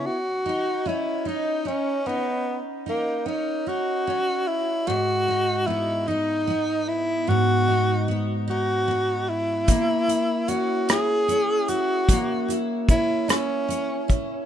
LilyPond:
<<
  \new Staff \with { instrumentName = "Tenor saxophone" } { \time 6/8 \key gis \minor \tempo 4. = 50 fis'4 e'8 dis'8 cis'8 b8 | r8 ais8 dis'8 fis'4 e'8 | fis'4 e'8 dis'4 e'8 | fis'4 r8 fis'4 e'8~ |
e'4 fis'8 gis'4 fis'8~ | fis'8 r8 e'8 cis'4 r8 | }
  \new Staff \with { instrumentName = "Steel-string acoustic guitar" } { \time 6/8 \key gis \minor r8 dis'8 cis'8 dis'8 cis'8 dis'8~ | dis'8 dis'8 cis'8 dis'8 cis'4 | gis,8 dis'8 b8 dis'8 b4 | gis,8 dis'8 b8 dis'8 b4 |
ais8 e'8 cis'8 e'8 cis'8 e'8 | ais8 e'8 cis'8 e'8 cis'8 e'8 | }
  \new DrumStaff \with { instrumentName = "Drums" } \drummode { \time 6/8 r4. r4. | r4. r4. | r4. r4. | r4. r4. |
<hh bd>8 hh8 hh8 <hh ss>8 hh8 hh8 | <hh bd>8 hh8 <hh bd>8 <hh ss>8 hh8 <hh bd>8 | }
>>